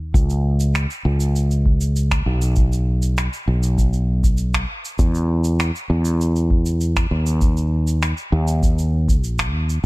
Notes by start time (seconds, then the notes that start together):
Already playing: D#2
0.14 C#2, kick, shaker
0.30 shaker
0.60 shaker
0.75 finger snap, shaker
0.90 shaker
1.05 C#2
1.20 shaker
1.36 shaker
1.51 shaker
1.66 kick
1.81 shaker
1.96 shaker
2.11 finger snap, kick, shaker
2.26 B1
2.42 shaker
2.56 kick, shaker
2.72 shaker
3.02 shaker
3.18 finger snap, shaker
3.33 shaker
3.48 B1
3.63 shaker
3.78 kick, shaker
3.93 shaker
4.24 kick, shaker
4.37 shaker
4.54 finger snap, kick, shaker
4.85 shaker
4.99 E2, kick, shaker
5.15 shaker
5.44 shaker
5.60 finger snap, shaker
5.76 shaker
5.90 E2
6.05 shaker
6.21 shaker
6.36 shaker
6.51 kick
6.66 shaker
6.81 shaker
6.96 finger snap, kick, shaker
7.11 D#2
7.26 shaker
7.41 kick, shaker
7.57 shaker
7.87 shaker
8.02 finger snap, shaker
8.17 shaker
8.32 D#2
8.48 shaker
8.63 kick, shaker
8.79 shaker
9.08 kick, shaker
9.23 A#1, shaker
9.39 finger snap, kick, shaker
9.53 D#2
9.69 shaker